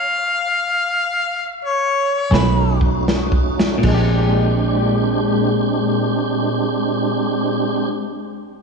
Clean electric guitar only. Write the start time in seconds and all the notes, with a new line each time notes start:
2.31 B2 D#3 A3 C#4
3.78 A#2
3.84 G#3
3.90 D4 G4